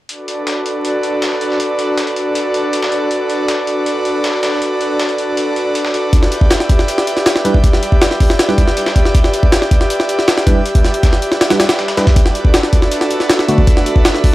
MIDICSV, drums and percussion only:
0, 0, Header, 1, 2, 480
1, 0, Start_track
1, 0, Key_signature, 2, "minor"
1, 0, Tempo, 377358
1, 116, Time_signature, 4, 2, 24, 8
1, 18251, End_track
2, 0, Start_track
2, 0, Title_t, "Drums"
2, 116, Note_on_c, 9, 42, 82
2, 243, Note_off_c, 9, 42, 0
2, 356, Note_on_c, 9, 42, 68
2, 484, Note_off_c, 9, 42, 0
2, 595, Note_on_c, 9, 38, 114
2, 595, Note_on_c, 9, 42, 84
2, 722, Note_off_c, 9, 38, 0
2, 722, Note_off_c, 9, 42, 0
2, 835, Note_on_c, 9, 42, 64
2, 963, Note_off_c, 9, 42, 0
2, 1076, Note_on_c, 9, 42, 83
2, 1203, Note_off_c, 9, 42, 0
2, 1314, Note_on_c, 9, 42, 64
2, 1442, Note_off_c, 9, 42, 0
2, 1553, Note_on_c, 9, 38, 119
2, 1553, Note_on_c, 9, 42, 87
2, 1675, Note_off_c, 9, 38, 0
2, 1675, Note_on_c, 9, 38, 50
2, 1680, Note_off_c, 9, 42, 0
2, 1795, Note_on_c, 9, 42, 64
2, 1802, Note_off_c, 9, 38, 0
2, 1915, Note_on_c, 9, 38, 42
2, 1922, Note_off_c, 9, 42, 0
2, 2034, Note_on_c, 9, 42, 80
2, 2042, Note_off_c, 9, 38, 0
2, 2161, Note_off_c, 9, 42, 0
2, 2274, Note_on_c, 9, 42, 78
2, 2401, Note_off_c, 9, 42, 0
2, 2513, Note_on_c, 9, 38, 117
2, 2513, Note_on_c, 9, 42, 86
2, 2634, Note_off_c, 9, 42, 0
2, 2634, Note_on_c, 9, 42, 41
2, 2640, Note_off_c, 9, 38, 0
2, 2753, Note_off_c, 9, 42, 0
2, 2753, Note_on_c, 9, 42, 63
2, 2880, Note_off_c, 9, 42, 0
2, 2993, Note_on_c, 9, 42, 85
2, 3120, Note_off_c, 9, 42, 0
2, 3233, Note_on_c, 9, 42, 68
2, 3360, Note_off_c, 9, 42, 0
2, 3473, Note_on_c, 9, 42, 87
2, 3593, Note_on_c, 9, 38, 112
2, 3601, Note_off_c, 9, 42, 0
2, 3713, Note_on_c, 9, 42, 63
2, 3721, Note_off_c, 9, 38, 0
2, 3841, Note_off_c, 9, 42, 0
2, 3953, Note_on_c, 9, 42, 81
2, 4081, Note_off_c, 9, 42, 0
2, 4193, Note_on_c, 9, 42, 69
2, 4320, Note_off_c, 9, 42, 0
2, 4432, Note_on_c, 9, 38, 116
2, 4432, Note_on_c, 9, 42, 87
2, 4559, Note_off_c, 9, 38, 0
2, 4559, Note_off_c, 9, 42, 0
2, 4673, Note_on_c, 9, 42, 65
2, 4800, Note_off_c, 9, 42, 0
2, 4913, Note_on_c, 9, 42, 84
2, 5041, Note_off_c, 9, 42, 0
2, 5153, Note_on_c, 9, 42, 65
2, 5280, Note_off_c, 9, 42, 0
2, 5393, Note_on_c, 9, 38, 117
2, 5393, Note_on_c, 9, 42, 87
2, 5515, Note_off_c, 9, 38, 0
2, 5515, Note_on_c, 9, 38, 52
2, 5520, Note_off_c, 9, 42, 0
2, 5633, Note_off_c, 9, 38, 0
2, 5633, Note_on_c, 9, 38, 98
2, 5633, Note_on_c, 9, 42, 76
2, 5755, Note_off_c, 9, 38, 0
2, 5755, Note_on_c, 9, 38, 40
2, 5760, Note_off_c, 9, 42, 0
2, 5873, Note_on_c, 9, 42, 81
2, 5882, Note_off_c, 9, 38, 0
2, 6001, Note_off_c, 9, 42, 0
2, 6114, Note_on_c, 9, 42, 69
2, 6241, Note_off_c, 9, 42, 0
2, 6354, Note_on_c, 9, 38, 112
2, 6354, Note_on_c, 9, 42, 87
2, 6474, Note_off_c, 9, 42, 0
2, 6474, Note_on_c, 9, 42, 43
2, 6481, Note_off_c, 9, 38, 0
2, 6594, Note_off_c, 9, 42, 0
2, 6594, Note_on_c, 9, 42, 66
2, 6721, Note_off_c, 9, 42, 0
2, 6834, Note_on_c, 9, 42, 84
2, 6962, Note_off_c, 9, 42, 0
2, 7076, Note_on_c, 9, 42, 63
2, 7203, Note_off_c, 9, 42, 0
2, 7315, Note_on_c, 9, 42, 85
2, 7435, Note_on_c, 9, 38, 110
2, 7442, Note_off_c, 9, 42, 0
2, 7556, Note_on_c, 9, 42, 64
2, 7562, Note_off_c, 9, 38, 0
2, 7683, Note_off_c, 9, 42, 0
2, 7795, Note_on_c, 9, 42, 80
2, 7796, Note_off_c, 9, 42, 0
2, 7796, Note_on_c, 9, 36, 110
2, 7796, Note_on_c, 9, 42, 84
2, 7919, Note_on_c, 9, 38, 46
2, 7923, Note_off_c, 9, 36, 0
2, 7923, Note_off_c, 9, 42, 0
2, 8035, Note_on_c, 9, 42, 68
2, 8037, Note_off_c, 9, 42, 0
2, 8037, Note_on_c, 9, 42, 64
2, 8046, Note_off_c, 9, 38, 0
2, 8157, Note_on_c, 9, 36, 90
2, 8164, Note_off_c, 9, 42, 0
2, 8274, Note_on_c, 9, 38, 115
2, 8274, Note_on_c, 9, 42, 84
2, 8277, Note_off_c, 9, 38, 0
2, 8277, Note_off_c, 9, 42, 0
2, 8277, Note_on_c, 9, 38, 117
2, 8277, Note_on_c, 9, 42, 88
2, 8284, Note_off_c, 9, 36, 0
2, 8399, Note_off_c, 9, 38, 0
2, 8399, Note_on_c, 9, 38, 48
2, 8404, Note_off_c, 9, 42, 0
2, 8514, Note_on_c, 9, 42, 66
2, 8516, Note_on_c, 9, 36, 92
2, 8517, Note_off_c, 9, 42, 0
2, 8517, Note_on_c, 9, 42, 69
2, 8526, Note_off_c, 9, 38, 0
2, 8638, Note_on_c, 9, 38, 43
2, 8643, Note_off_c, 9, 36, 0
2, 8645, Note_off_c, 9, 42, 0
2, 8754, Note_on_c, 9, 42, 85
2, 8758, Note_off_c, 9, 42, 0
2, 8758, Note_on_c, 9, 42, 85
2, 8765, Note_off_c, 9, 38, 0
2, 8879, Note_on_c, 9, 38, 49
2, 8885, Note_off_c, 9, 42, 0
2, 8996, Note_on_c, 9, 42, 65
2, 8997, Note_off_c, 9, 42, 0
2, 8997, Note_on_c, 9, 42, 67
2, 9007, Note_off_c, 9, 38, 0
2, 9116, Note_on_c, 9, 38, 39
2, 9124, Note_off_c, 9, 42, 0
2, 9233, Note_off_c, 9, 38, 0
2, 9233, Note_on_c, 9, 38, 117
2, 9233, Note_on_c, 9, 42, 88
2, 9236, Note_off_c, 9, 38, 0
2, 9236, Note_off_c, 9, 42, 0
2, 9236, Note_on_c, 9, 38, 114
2, 9236, Note_on_c, 9, 42, 83
2, 9356, Note_off_c, 9, 38, 0
2, 9356, Note_on_c, 9, 38, 50
2, 9357, Note_off_c, 9, 38, 0
2, 9357, Note_on_c, 9, 38, 54
2, 9364, Note_off_c, 9, 42, 0
2, 9475, Note_on_c, 9, 42, 66
2, 9476, Note_off_c, 9, 42, 0
2, 9476, Note_on_c, 9, 42, 66
2, 9484, Note_off_c, 9, 38, 0
2, 9596, Note_on_c, 9, 36, 93
2, 9603, Note_off_c, 9, 42, 0
2, 9715, Note_off_c, 9, 36, 0
2, 9715, Note_on_c, 9, 36, 111
2, 9715, Note_on_c, 9, 42, 83
2, 9837, Note_on_c, 9, 38, 40
2, 9842, Note_off_c, 9, 36, 0
2, 9843, Note_off_c, 9, 42, 0
2, 9955, Note_on_c, 9, 42, 80
2, 9964, Note_off_c, 9, 38, 0
2, 10076, Note_on_c, 9, 36, 94
2, 10082, Note_off_c, 9, 42, 0
2, 10194, Note_on_c, 9, 38, 117
2, 10194, Note_on_c, 9, 42, 88
2, 10196, Note_off_c, 9, 38, 0
2, 10196, Note_off_c, 9, 42, 0
2, 10196, Note_on_c, 9, 38, 116
2, 10196, Note_on_c, 9, 42, 89
2, 10203, Note_off_c, 9, 36, 0
2, 10314, Note_off_c, 9, 42, 0
2, 10314, Note_on_c, 9, 42, 43
2, 10318, Note_off_c, 9, 38, 0
2, 10318, Note_on_c, 9, 38, 38
2, 10435, Note_off_c, 9, 42, 0
2, 10435, Note_on_c, 9, 42, 65
2, 10436, Note_on_c, 9, 36, 92
2, 10436, Note_on_c, 9, 46, 80
2, 10445, Note_off_c, 9, 38, 0
2, 10557, Note_on_c, 9, 38, 54
2, 10562, Note_off_c, 9, 42, 0
2, 10563, Note_off_c, 9, 36, 0
2, 10563, Note_off_c, 9, 46, 0
2, 10674, Note_on_c, 9, 42, 88
2, 10675, Note_off_c, 9, 38, 0
2, 10675, Note_off_c, 9, 42, 0
2, 10675, Note_on_c, 9, 38, 101
2, 10675, Note_on_c, 9, 42, 77
2, 10797, Note_off_c, 9, 38, 0
2, 10797, Note_on_c, 9, 38, 43
2, 10803, Note_off_c, 9, 42, 0
2, 10913, Note_on_c, 9, 42, 65
2, 10914, Note_off_c, 9, 42, 0
2, 10914, Note_on_c, 9, 36, 81
2, 10914, Note_on_c, 9, 42, 60
2, 10924, Note_off_c, 9, 38, 0
2, 11035, Note_on_c, 9, 38, 40
2, 11041, Note_off_c, 9, 36, 0
2, 11041, Note_off_c, 9, 42, 0
2, 11154, Note_on_c, 9, 42, 75
2, 11155, Note_off_c, 9, 42, 0
2, 11155, Note_on_c, 9, 42, 88
2, 11162, Note_off_c, 9, 38, 0
2, 11275, Note_on_c, 9, 38, 114
2, 11282, Note_off_c, 9, 42, 0
2, 11394, Note_on_c, 9, 36, 85
2, 11394, Note_on_c, 9, 42, 67
2, 11395, Note_off_c, 9, 42, 0
2, 11395, Note_on_c, 9, 42, 59
2, 11402, Note_off_c, 9, 38, 0
2, 11517, Note_on_c, 9, 38, 39
2, 11522, Note_off_c, 9, 36, 0
2, 11522, Note_off_c, 9, 42, 0
2, 11633, Note_on_c, 9, 42, 86
2, 11634, Note_on_c, 9, 36, 107
2, 11636, Note_off_c, 9, 42, 0
2, 11636, Note_on_c, 9, 42, 86
2, 11644, Note_off_c, 9, 38, 0
2, 11756, Note_on_c, 9, 38, 47
2, 11762, Note_off_c, 9, 36, 0
2, 11763, Note_off_c, 9, 42, 0
2, 11873, Note_on_c, 9, 42, 70
2, 11876, Note_off_c, 9, 42, 0
2, 11876, Note_on_c, 9, 42, 65
2, 11883, Note_off_c, 9, 38, 0
2, 11995, Note_on_c, 9, 36, 93
2, 12003, Note_off_c, 9, 42, 0
2, 12113, Note_on_c, 9, 38, 114
2, 12113, Note_on_c, 9, 42, 88
2, 12123, Note_off_c, 9, 36, 0
2, 12236, Note_off_c, 9, 38, 0
2, 12236, Note_on_c, 9, 38, 48
2, 12240, Note_off_c, 9, 42, 0
2, 12354, Note_on_c, 9, 36, 94
2, 12354, Note_on_c, 9, 42, 70
2, 12363, Note_off_c, 9, 38, 0
2, 12475, Note_on_c, 9, 38, 42
2, 12481, Note_off_c, 9, 36, 0
2, 12481, Note_off_c, 9, 42, 0
2, 12594, Note_on_c, 9, 42, 87
2, 12595, Note_off_c, 9, 42, 0
2, 12595, Note_on_c, 9, 42, 87
2, 12603, Note_off_c, 9, 38, 0
2, 12717, Note_on_c, 9, 38, 47
2, 12722, Note_off_c, 9, 42, 0
2, 12833, Note_on_c, 9, 42, 65
2, 12836, Note_off_c, 9, 42, 0
2, 12836, Note_on_c, 9, 42, 66
2, 12844, Note_off_c, 9, 38, 0
2, 12958, Note_on_c, 9, 38, 40
2, 12963, Note_off_c, 9, 42, 0
2, 13073, Note_off_c, 9, 38, 0
2, 13073, Note_on_c, 9, 38, 117
2, 13073, Note_on_c, 9, 42, 89
2, 13075, Note_off_c, 9, 38, 0
2, 13075, Note_off_c, 9, 42, 0
2, 13075, Note_on_c, 9, 38, 114
2, 13075, Note_on_c, 9, 42, 86
2, 13195, Note_off_c, 9, 38, 0
2, 13195, Note_on_c, 9, 38, 52
2, 13198, Note_off_c, 9, 38, 0
2, 13198, Note_on_c, 9, 38, 53
2, 13203, Note_off_c, 9, 42, 0
2, 13313, Note_on_c, 9, 42, 68
2, 13315, Note_on_c, 9, 36, 99
2, 13316, Note_off_c, 9, 42, 0
2, 13316, Note_on_c, 9, 42, 80
2, 13325, Note_off_c, 9, 38, 0
2, 13442, Note_off_c, 9, 36, 0
2, 13443, Note_off_c, 9, 42, 0
2, 13554, Note_on_c, 9, 42, 82
2, 13555, Note_off_c, 9, 42, 0
2, 13555, Note_on_c, 9, 42, 62
2, 13675, Note_off_c, 9, 42, 0
2, 13675, Note_on_c, 9, 36, 99
2, 13675, Note_on_c, 9, 42, 78
2, 13794, Note_off_c, 9, 42, 0
2, 13794, Note_on_c, 9, 42, 70
2, 13796, Note_on_c, 9, 38, 41
2, 13803, Note_off_c, 9, 36, 0
2, 13916, Note_off_c, 9, 42, 0
2, 13916, Note_on_c, 9, 42, 60
2, 13923, Note_off_c, 9, 38, 0
2, 14034, Note_off_c, 9, 42, 0
2, 14034, Note_on_c, 9, 36, 102
2, 14034, Note_on_c, 9, 38, 115
2, 14034, Note_on_c, 9, 42, 83
2, 14154, Note_off_c, 9, 38, 0
2, 14154, Note_on_c, 9, 38, 43
2, 14156, Note_off_c, 9, 42, 0
2, 14156, Note_on_c, 9, 42, 42
2, 14161, Note_off_c, 9, 36, 0
2, 14274, Note_off_c, 9, 42, 0
2, 14274, Note_on_c, 9, 42, 63
2, 14275, Note_off_c, 9, 42, 0
2, 14275, Note_on_c, 9, 42, 66
2, 14281, Note_off_c, 9, 38, 0
2, 14394, Note_on_c, 9, 38, 54
2, 14402, Note_off_c, 9, 42, 0
2, 14513, Note_off_c, 9, 38, 0
2, 14513, Note_on_c, 9, 38, 103
2, 14513, Note_on_c, 9, 42, 81
2, 14515, Note_off_c, 9, 42, 0
2, 14515, Note_on_c, 9, 42, 88
2, 14633, Note_off_c, 9, 38, 0
2, 14633, Note_off_c, 9, 42, 0
2, 14633, Note_on_c, 9, 38, 99
2, 14633, Note_on_c, 9, 42, 75
2, 14751, Note_off_c, 9, 38, 0
2, 14751, Note_off_c, 9, 42, 0
2, 14751, Note_on_c, 9, 38, 103
2, 14751, Note_on_c, 9, 42, 77
2, 14754, Note_off_c, 9, 38, 0
2, 14754, Note_off_c, 9, 42, 0
2, 14754, Note_on_c, 9, 38, 104
2, 14754, Note_on_c, 9, 42, 77
2, 14870, Note_off_c, 9, 38, 0
2, 14870, Note_off_c, 9, 42, 0
2, 14870, Note_on_c, 9, 38, 101
2, 14870, Note_on_c, 9, 42, 77
2, 14875, Note_off_c, 9, 38, 0
2, 14875, Note_off_c, 9, 42, 0
2, 14875, Note_on_c, 9, 38, 101
2, 14875, Note_on_c, 9, 42, 79
2, 14994, Note_off_c, 9, 38, 0
2, 14994, Note_off_c, 9, 42, 0
2, 14994, Note_on_c, 9, 38, 106
2, 14994, Note_on_c, 9, 42, 80
2, 15115, Note_off_c, 9, 38, 0
2, 15115, Note_off_c, 9, 42, 0
2, 15115, Note_on_c, 9, 38, 105
2, 15115, Note_on_c, 9, 42, 81
2, 15230, Note_off_c, 9, 38, 0
2, 15230, Note_off_c, 9, 42, 0
2, 15230, Note_on_c, 9, 38, 47
2, 15230, Note_on_c, 9, 42, 69
2, 15234, Note_off_c, 9, 38, 0
2, 15234, Note_off_c, 9, 42, 0
2, 15234, Note_on_c, 9, 38, 103
2, 15234, Note_on_c, 9, 42, 81
2, 15353, Note_on_c, 9, 36, 97
2, 15354, Note_off_c, 9, 38, 0
2, 15354, Note_off_c, 9, 42, 0
2, 15354, Note_on_c, 9, 38, 103
2, 15354, Note_on_c, 9, 42, 79
2, 15470, Note_off_c, 9, 42, 0
2, 15470, Note_on_c, 9, 42, 92
2, 15472, Note_off_c, 9, 36, 0
2, 15472, Note_on_c, 9, 36, 109
2, 15475, Note_off_c, 9, 42, 0
2, 15475, Note_on_c, 9, 42, 83
2, 15481, Note_off_c, 9, 38, 0
2, 15591, Note_on_c, 9, 38, 46
2, 15599, Note_off_c, 9, 36, 0
2, 15602, Note_off_c, 9, 42, 0
2, 15710, Note_on_c, 9, 42, 65
2, 15714, Note_off_c, 9, 42, 0
2, 15714, Note_on_c, 9, 42, 70
2, 15718, Note_off_c, 9, 38, 0
2, 15833, Note_on_c, 9, 36, 92
2, 15841, Note_off_c, 9, 42, 0
2, 15949, Note_on_c, 9, 38, 115
2, 15949, Note_on_c, 9, 42, 89
2, 15953, Note_off_c, 9, 38, 0
2, 15953, Note_off_c, 9, 42, 0
2, 15953, Note_on_c, 9, 38, 116
2, 15953, Note_on_c, 9, 42, 85
2, 15960, Note_off_c, 9, 36, 0
2, 16070, Note_off_c, 9, 38, 0
2, 16070, Note_on_c, 9, 38, 46
2, 16080, Note_off_c, 9, 42, 0
2, 16189, Note_on_c, 9, 42, 71
2, 16191, Note_on_c, 9, 36, 97
2, 16193, Note_off_c, 9, 42, 0
2, 16193, Note_on_c, 9, 42, 66
2, 16198, Note_off_c, 9, 38, 0
2, 16310, Note_on_c, 9, 38, 43
2, 16318, Note_off_c, 9, 36, 0
2, 16320, Note_off_c, 9, 42, 0
2, 16428, Note_on_c, 9, 42, 84
2, 16432, Note_off_c, 9, 42, 0
2, 16432, Note_on_c, 9, 42, 87
2, 16437, Note_off_c, 9, 38, 0
2, 16550, Note_on_c, 9, 38, 49
2, 16559, Note_off_c, 9, 42, 0
2, 16670, Note_on_c, 9, 42, 65
2, 16673, Note_off_c, 9, 42, 0
2, 16673, Note_on_c, 9, 42, 67
2, 16677, Note_off_c, 9, 38, 0
2, 16792, Note_on_c, 9, 38, 40
2, 16800, Note_off_c, 9, 42, 0
2, 16911, Note_off_c, 9, 38, 0
2, 16911, Note_on_c, 9, 38, 118
2, 16911, Note_on_c, 9, 42, 88
2, 16912, Note_off_c, 9, 38, 0
2, 16912, Note_off_c, 9, 42, 0
2, 16912, Note_on_c, 9, 38, 117
2, 16912, Note_on_c, 9, 42, 91
2, 17033, Note_off_c, 9, 38, 0
2, 17033, Note_on_c, 9, 38, 53
2, 17034, Note_off_c, 9, 38, 0
2, 17034, Note_on_c, 9, 38, 51
2, 17039, Note_off_c, 9, 42, 0
2, 17152, Note_on_c, 9, 42, 67
2, 17153, Note_off_c, 9, 42, 0
2, 17153, Note_on_c, 9, 42, 68
2, 17161, Note_off_c, 9, 38, 0
2, 17274, Note_on_c, 9, 36, 94
2, 17280, Note_off_c, 9, 42, 0
2, 17391, Note_on_c, 9, 42, 83
2, 17392, Note_off_c, 9, 42, 0
2, 17392, Note_on_c, 9, 42, 88
2, 17393, Note_off_c, 9, 36, 0
2, 17393, Note_on_c, 9, 36, 110
2, 17514, Note_on_c, 9, 38, 43
2, 17519, Note_off_c, 9, 42, 0
2, 17520, Note_off_c, 9, 36, 0
2, 17631, Note_on_c, 9, 42, 80
2, 17634, Note_off_c, 9, 42, 0
2, 17634, Note_on_c, 9, 42, 66
2, 17642, Note_off_c, 9, 38, 0
2, 17754, Note_on_c, 9, 36, 97
2, 17761, Note_off_c, 9, 42, 0
2, 17871, Note_on_c, 9, 38, 121
2, 17871, Note_on_c, 9, 42, 91
2, 17873, Note_off_c, 9, 38, 0
2, 17873, Note_off_c, 9, 42, 0
2, 17873, Note_on_c, 9, 38, 116
2, 17873, Note_on_c, 9, 42, 92
2, 17882, Note_off_c, 9, 36, 0
2, 17992, Note_off_c, 9, 42, 0
2, 17992, Note_on_c, 9, 42, 45
2, 17994, Note_off_c, 9, 38, 0
2, 17994, Note_on_c, 9, 38, 38
2, 18111, Note_off_c, 9, 42, 0
2, 18111, Note_on_c, 9, 42, 66
2, 18113, Note_on_c, 9, 36, 95
2, 18113, Note_on_c, 9, 46, 82
2, 18121, Note_off_c, 9, 38, 0
2, 18239, Note_off_c, 9, 42, 0
2, 18240, Note_off_c, 9, 46, 0
2, 18241, Note_off_c, 9, 36, 0
2, 18251, End_track
0, 0, End_of_file